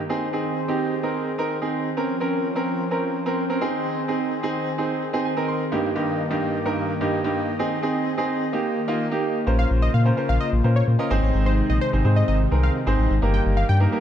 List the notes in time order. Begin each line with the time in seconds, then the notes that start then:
Already playing: D#3
0.09 C4 D#4 G#4 C5
0.33 C4 D#4 G#4
0.68 C4 D#4 G4
1.03 C4 D#4 A#4
1.38 C4 D#4 A#4
1.62 C4 D#4 G#4
1.97 F3 C4 C#4 A#4 C5
2.20 C4 C#4 A#4
2.55 C4 C#4 A#4
2.91 C4 C#4 A#4
3.26 C4 C#4 A#4
3.49 C4 C#4 A#4
3.61 D#3 C4 D#4 G#4
4.08 C4 D#4 G#4
4.43 C4 D#4 G#4
4.78 C4 D#4 G#4
5.13 C4 D#4 G#4
5.25 G#5
5.37 C4 D#4 A#4
5.48 C6
5.72 G2 A#3 D#4 G4 D#5
5.95 G2 A#3 D#4 G4
6.30 G2 A#3 D#4 G4
6.65 G2 A#3 D#4 A#4
7.01 G2 A#3 D#4 G4
7.24 G2 A#3 D#4 G4
7.59 C4 D#4 G#4
7.82 C4 D#4 G#4
8.17 C4 D#4 G#4
8.53 D#3 A#3 D#4 G4
8.88 A#3 D#4 F4
9.11 A#3 D#4 G4
9.47 A#1 C#3 A#3 C#4 F4 A#4 C5
9.59 F5
9.70 A#1
9.82 D#5
9.94 A#2 F5
10.05 C#4 F4 A#4 C5
10.17 C#4 F4 A#4 C5
10.29 A#1 F5
10.41 D#5
10.52 A#1
10.64 A#2 C#4 F4 A#4 C5
10.76 C#5
10.88 A#2
10.99 C#4 F4 A#4 D#5
11.10 G#1 C3 D#3 G#3 C4 D#4 G#4 C5
11.23 A1
11.34 G#1
11.46 C5
11.70 A#1 D#5
11.81 C5
11.93 G#1 C4 D#4 G#4 C5
12.04 G#2 C4 D#4 G#4 C5
12.16 D#5
12.28 G#1 D#5
12.51 C2 C4 D#4 G#4 A#4
12.63 F5
12.86 G#1 C4 D#4 G#4 C5
12.98 A1
13.10 G#1
13.22 G1 D#3 G3 A#3 D#4 G4 A#4
13.34 G5
13.46 G1
13.57 F5
13.69 G2 G5
13.80 A#3 D#4 G4 A#4
13.92 A#3 D#4 G4 A#4